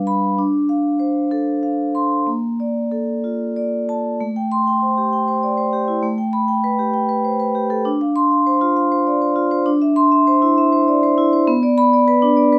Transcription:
vibraphone
Already playing: G3 D4 B4 F5
0.07 B5
0.39 D4
0.69 F5
1.00 C5
1.31 A4
1.63 F5
1.95 C6
2.27 A#3
2.60 D5
2.92 A4
3.24 F4
3.56 D5
3.89 A5
4.21 A3
4.36 G5
4.52 C6
4.67 G5
4.82 C5
4.98 G4
5.13 G5
5.28 C5
5.43 D5
5.57 C5
5.73 G4
5.88 E4
6.03 A3
6.18 G5
6.33 B5
6.48 G5
6.64 B4
6.79 G4
6.94 G5
7.09 B4
7.25 C5
7.40 B4
7.55 G4
7.70 A4
7.85 D4
8.01 F5
8.16 C6
8.31 F5
8.47 C5
8.61 F4
8.77 F5
8.92 C5
9.07 D5
9.22 C5
9.36 F4
9.51 C5
9.66 D4
9.82 E5
9.96 C6
10.12 E5
10.27 C5
10.42 E4
10.58 E5
10.73 C5
10.88 D5
11.03 C5
11.18 E4
11.33 C5
11.47 B3
11.63 D5
11.78 B5
11.93 D5
12.08 B4
12.22 D4
12.37 D5
12.53 B4

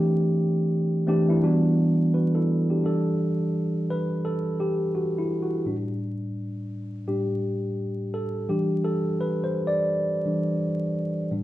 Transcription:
tine electric piano
Already playing: E3 A3 C4 D4 G4
1.07 E3 A3 C4 D4 G4
1.28 E3 A3 C4 D4 E4
1.43 E3 G3 B3 D4 F#4
2.14 F#4 B4
2.35 E4 A4
2.70 D4 G4
2.83 E3 G3 D4 A4
3.90 B4
4.25 A4
4.60 G4
4.95 F#4
5.18 E4
5.43 F#4
5.65 A2 G3 D4
7.08 A2 G3 D4 G4
8.14 A4
8.49 E3 G3 D4 G4
8.84 A4
9.21 B4
9.44 C5
9.67 D5
10.25 E3 G3 D4
11.31 A2 G3 D4

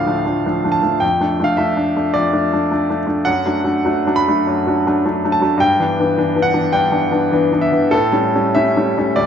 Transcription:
grand piano
Already playing: D2 A2 F3 A3 D4 D5 F5 A5
0.06 F3 A3 D4
0.26 F3 A3 D4
0.46 F3 A3 D4
0.64 F3 A3 D4
0.72 A5
0.82 F3 A3 D4
1.00 F2 G5
1.20 A3 D4
1.40 A3 D4
1.44 F5
1.57 A3 D4 E5
1.77 A3 D4
1.97 A3 D4
2.14 F2 D5
2.33 A3 D4
2.53 A3 D4
2.71 A3 D4
2.90 A3 D4
3.07 A3 D4
3.25 F#2 F#5
3.46 F#3 A3 D4
3.64 F#3 A3 D4
3.85 F#3 A3 D4
4.07 F#3 A3 D4
4.16 B5
4.28 F#3 A3 D4
4.47 F#2
4.67 F#3 A3 D4
4.86 F#3 A3 D4
5.05 F#3 A3 D4
5.24 F#3 A3 D4
5.32 A5
5.41 F#3 A3 D4
5.57 G2 G5
5.80 E3 B3 D4
6.00 E3 B3 D4
6.18 E3 B3 D4
6.35 E3 B3 D4
6.42 F#5
6.54 E3 B3 D4
6.73 G2 G5
6.91 E3 B3 D4
7.11 E3 B3 D4
7.32 E3 B3 D4
7.52 E3 B3 D4
7.61 E5
7.72 E3 B3 D4
7.91 A2 A4
8.12 G3 A3 C#4
8.35 G3 A3 C#4
8.55 G3 A3 C#4 E5
8.77 G3 A3 C#4
8.98 G3 A3 C#4
9.16 D2 D5

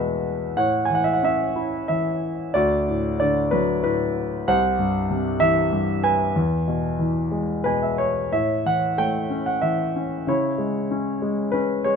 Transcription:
grand piano
Already playing: E2 B2 E3 G#3 B4 E5 F#5
0.57 A2 C#5 F#5
0.85 G#5
0.90 E3
0.95 F#5
1.04 E5
1.13 F#5
1.23 C#4 E5
1.56 E4
1.88 E3 E5
2.54 D2 F#4 D5
2.88 A2
3.20 D3 D5
3.51 F#3 B4
3.83 A2 B4
4.48 C2 C5 F#5
4.79 G2
5.10 C3
5.40 E3 E5
5.72 G2
6.04 B4 G#5
6.36 E2
6.68 B2
6.99 E3
7.32 G#3
7.64 B2 B4 G#5
7.82 E5
7.98 C#5
8.32 A2 C#5 E5
8.66 E3 F#5
8.98 A3 G5
9.30 C#4
9.46 F#5
9.62 E3 E5
9.96 C#4
10.27 C#3 E4 C#5
10.58 G#3
10.91 C#4
11.22 G#3
11.52 C#4 B4
11.84 G#3 C#5

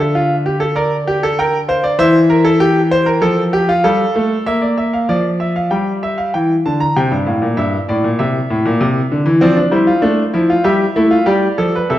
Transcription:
grand piano
Already playing: D3 E5
0.00 A4
0.15 F4
0.46 G4
0.60 A4
0.76 A#4 D5
1.07 G4
1.23 A4
1.39 A#4 G5
1.68 C5 F5
1.84 D5
1.99 E3 C5 E5
2.30 A#4
2.45 A4
2.60 G4 G5
2.91 C5
3.06 A#4
3.21 F3 A4
3.53 G4
3.69 F4
3.84 G3 A4 F5
4.15 A3
4.46 A#3 E5
4.62 D5
4.78 E5
4.93 F5
5.09 F3 D5
5.40 E5
5.56 F5
5.71 G3 G5
6.03 E5
6.18 F5
6.34 E3 G5
6.66 D3 A5
6.80 A#5
6.96 C3 G5
7.12 G2
7.26 A2 F5
7.42 A#2
7.57 G2 E5
7.89 A2 D5
8.04 A#2
8.19 C3 E5
8.50 A2
8.65 A#2
8.81 C3
9.12 D3
9.26 E3
9.41 F3 C4 D5
9.57 D4
9.71 G3 E4 C5
9.87 F4
10.02 A3 D4
10.34 F3 E4
10.50 F4
10.64 G3 G4 E5
10.96 A3 E4
11.11 F4
11.26 G3 G4 D5
11.58 F3 A4
11.75 B4
11.90 C3 A4 E5

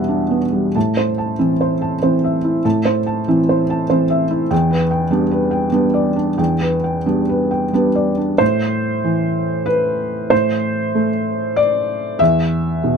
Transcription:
felt piano
Already playing: E2 B2 G3 B3 D4 E4 F#4 E5 F#5
0.08 D4
0.31 B3
0.53 G3
0.75 A2 A5
0.97 C5
1.18 A5
1.39 E3 C4 E4
1.61 C5
1.81 A5
2.02 E3 C4 C5
2.24 E5
2.44 E4
2.65 A2 A5
2.85 C5
3.07 A5
3.28 E3 C4 E4
3.49 C5
3.70 A5
3.90 E3 C4 C5
4.10 E5
4.31 E4
4.51 E2 G5
4.71 B4
4.91 G5
5.11 G3 B3 D4
5.31 B4
5.51 G5
5.72 G3 B3 D4 B4
5.94 D5
6.16 D4
6.38 E2 G5
6.61 B4
6.84 G5
7.06 G3 B3 D4
7.29 B4
7.51 G5
7.73 G3 B3 D4 B4
7.95 D5
8.17 D4
8.38 A2 C5
9.04 E3
9.66 B4
10.30 A2 C5
10.95 A3
11.56 D5
12.19 E2 E5
12.84 B2

